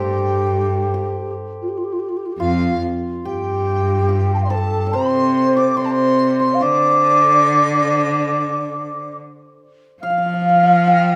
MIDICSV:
0, 0, Header, 1, 5, 480
1, 0, Start_track
1, 0, Tempo, 831025
1, 1884, Time_signature, 4, 2, 24, 8
1, 2850, Tempo, 847458
1, 6373, End_track
2, 0, Start_track
2, 0, Title_t, "Dizi"
2, 0, Program_c, 0, 73
2, 0, Note_on_c, 0, 79, 64
2, 771, Note_off_c, 0, 79, 0
2, 1391, Note_on_c, 0, 77, 83
2, 1630, Note_off_c, 0, 77, 0
2, 1882, Note_on_c, 0, 79, 75
2, 2542, Note_off_c, 0, 79, 0
2, 2563, Note_on_c, 0, 84, 51
2, 2601, Note_on_c, 0, 81, 72
2, 2609, Note_off_c, 0, 84, 0
2, 2838, Note_on_c, 0, 84, 80
2, 2847, Note_off_c, 0, 81, 0
2, 3206, Note_on_c, 0, 86, 81
2, 3215, Note_off_c, 0, 84, 0
2, 3317, Note_on_c, 0, 84, 79
2, 3325, Note_off_c, 0, 86, 0
2, 3367, Note_on_c, 0, 81, 64
2, 3376, Note_off_c, 0, 84, 0
2, 3404, Note_on_c, 0, 84, 78
2, 3413, Note_off_c, 0, 81, 0
2, 3674, Note_off_c, 0, 84, 0
2, 3677, Note_on_c, 0, 84, 77
2, 3802, Note_on_c, 0, 86, 85
2, 3810, Note_off_c, 0, 84, 0
2, 5247, Note_off_c, 0, 86, 0
2, 5730, Note_on_c, 0, 89, 84
2, 6373, Note_off_c, 0, 89, 0
2, 6373, End_track
3, 0, Start_track
3, 0, Title_t, "Hammered dulcimer"
3, 0, Program_c, 1, 15
3, 0, Note_on_c, 1, 67, 68
3, 0, Note_on_c, 1, 69, 47
3, 0, Note_on_c, 1, 72, 50
3, 0, Note_on_c, 1, 74, 67
3, 323, Note_off_c, 1, 74, 0
3, 540, Note_off_c, 1, 67, 0
3, 543, Note_on_c, 1, 67, 56
3, 1184, Note_off_c, 1, 72, 0
3, 1385, Note_on_c, 1, 65, 77
3, 1625, Note_off_c, 1, 69, 0
3, 1877, Note_off_c, 1, 67, 0
3, 1879, Note_on_c, 1, 67, 69
3, 2359, Note_off_c, 1, 67, 0
3, 2361, Note_on_c, 1, 67, 67
3, 2600, Note_on_c, 1, 69, 72
3, 2811, Note_on_c, 1, 74, 62
3, 2849, Note_on_c, 1, 72, 75
3, 3206, Note_off_c, 1, 74, 0
3, 3209, Note_on_c, 1, 74, 76
3, 3320, Note_off_c, 1, 65, 0
3, 3320, Note_off_c, 1, 72, 0
3, 3323, Note_on_c, 1, 72, 78
3, 3676, Note_off_c, 1, 72, 0
3, 3678, Note_on_c, 1, 72, 69
3, 3794, Note_off_c, 1, 74, 0
3, 3796, Note_on_c, 1, 74, 71
3, 4147, Note_off_c, 1, 67, 0
3, 4260, Note_off_c, 1, 69, 0
3, 5173, Note_off_c, 1, 72, 0
3, 5221, Note_off_c, 1, 74, 0
3, 5735, Note_on_c, 1, 77, 76
3, 5774, Note_off_c, 1, 77, 0
3, 5776, Note_on_c, 1, 77, 52
3, 5818, Note_off_c, 1, 77, 0
3, 5821, Note_on_c, 1, 77, 53
3, 5863, Note_off_c, 1, 77, 0
3, 5866, Note_on_c, 1, 77, 47
3, 5908, Note_off_c, 1, 77, 0
3, 5910, Note_on_c, 1, 77, 51
3, 5953, Note_off_c, 1, 77, 0
3, 5955, Note_on_c, 1, 77, 45
3, 5997, Note_off_c, 1, 77, 0
3, 6000, Note_on_c, 1, 77, 54
3, 6033, Note_off_c, 1, 77, 0
3, 6036, Note_on_c, 1, 77, 50
3, 6074, Note_off_c, 1, 77, 0
3, 6076, Note_on_c, 1, 77, 58
3, 6118, Note_off_c, 1, 77, 0
3, 6120, Note_on_c, 1, 77, 53
3, 6214, Note_on_c, 1, 79, 75
3, 6373, Note_off_c, 1, 77, 0
3, 6373, Note_off_c, 1, 79, 0
3, 6373, End_track
4, 0, Start_track
4, 0, Title_t, "Xiao"
4, 0, Program_c, 2, 77
4, 0, Note_on_c, 2, 67, 88
4, 774, Note_off_c, 2, 67, 0
4, 935, Note_on_c, 2, 65, 59
4, 975, Note_on_c, 2, 67, 56
4, 984, Note_off_c, 2, 65, 0
4, 1027, Note_on_c, 2, 65, 58
4, 1035, Note_off_c, 2, 67, 0
4, 1063, Note_on_c, 2, 67, 59
4, 1072, Note_off_c, 2, 65, 0
4, 1113, Note_on_c, 2, 65, 59
4, 1122, Note_off_c, 2, 67, 0
4, 1153, Note_on_c, 2, 67, 58
4, 1162, Note_off_c, 2, 65, 0
4, 1206, Note_on_c, 2, 65, 58
4, 1214, Note_off_c, 2, 67, 0
4, 1253, Note_on_c, 2, 67, 57
4, 1261, Note_off_c, 2, 65, 0
4, 1303, Note_on_c, 2, 65, 59
4, 1312, Note_off_c, 2, 67, 0
4, 1342, Note_on_c, 2, 67, 59
4, 1351, Note_off_c, 2, 65, 0
4, 1390, Note_on_c, 2, 65, 75
4, 1398, Note_off_c, 2, 67, 0
4, 1647, Note_off_c, 2, 65, 0
4, 1882, Note_on_c, 2, 67, 85
4, 2505, Note_off_c, 2, 67, 0
4, 2509, Note_on_c, 2, 81, 35
4, 2527, Note_off_c, 2, 81, 0
4, 2530, Note_on_c, 2, 79, 38
4, 2550, Note_off_c, 2, 79, 0
4, 2553, Note_on_c, 2, 77, 45
4, 2565, Note_off_c, 2, 77, 0
4, 2567, Note_on_c, 2, 74, 49
4, 2592, Note_off_c, 2, 74, 0
4, 2595, Note_on_c, 2, 72, 55
4, 2629, Note_on_c, 2, 69, 86
4, 2638, Note_off_c, 2, 72, 0
4, 2859, Note_on_c, 2, 72, 92
4, 2867, Note_off_c, 2, 69, 0
4, 3330, Note_off_c, 2, 72, 0
4, 3340, Note_on_c, 2, 72, 92
4, 3761, Note_on_c, 2, 77, 65
4, 3769, Note_off_c, 2, 72, 0
4, 3808, Note_on_c, 2, 74, 99
4, 3817, Note_off_c, 2, 77, 0
4, 5250, Note_off_c, 2, 74, 0
4, 5730, Note_on_c, 2, 77, 102
4, 6373, Note_off_c, 2, 77, 0
4, 6373, End_track
5, 0, Start_track
5, 0, Title_t, "Cello"
5, 0, Program_c, 3, 42
5, 0, Note_on_c, 3, 43, 62
5, 774, Note_off_c, 3, 43, 0
5, 1379, Note_on_c, 3, 41, 84
5, 1624, Note_off_c, 3, 41, 0
5, 1886, Note_on_c, 3, 43, 69
5, 2856, Note_on_c, 3, 48, 72
5, 2864, Note_off_c, 3, 43, 0
5, 3329, Note_off_c, 3, 48, 0
5, 3332, Note_on_c, 3, 48, 75
5, 3806, Note_on_c, 3, 50, 77
5, 3815, Note_off_c, 3, 48, 0
5, 5249, Note_off_c, 3, 50, 0
5, 5734, Note_on_c, 3, 53, 80
5, 6373, Note_off_c, 3, 53, 0
5, 6373, End_track
0, 0, End_of_file